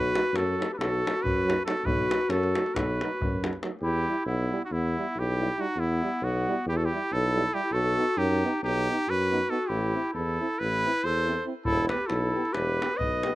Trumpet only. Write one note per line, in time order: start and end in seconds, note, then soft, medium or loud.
0.00 0.38 B4 loud
0.36 0.73 A4 medium
0.74 0.80 B4 medium
0.78 1.24 A4 medium
1.23 1.65 B4 loud
1.65 1.87 A4 loud
1.85 2.31 B4 loud
2.30 2.76 A4 medium
2.75 3.62 B4 medium
3.81 4.23 G4 medium
4.26 4.62 E4 medium
4.65 4.74 F#4 medium
4.72 5.20 E4 medium
5.19 5.62 G4 loud
5.61 5.81 F#4 medium
5.80 6.25 E4 loud
6.24 6.68 F#4 medium
6.68 6.78 G4 medium
6.77 6.86 A4 medium
6.85 7.14 G4 loud
7.13 7.56 A4 loud
7.54 7.74 G4 loud
7.72 8.20 A4 loud
8.18 8.63 G4 loud
8.64 9.11 G4 loud
9.10 9.51 B4 loud
9.50 9.69 A4 loud
9.68 10.13 G4 medium
10.14 10.60 A4 medium
10.59 11.06 B4 loud
11.04 11.45 C5 loud
11.65 11.88 A4 loud
11.88 12.08 B4 medium
12.06 12.54 A4 medium
12.53 12.99 B4 loud
12.97 13.35 D#5 loud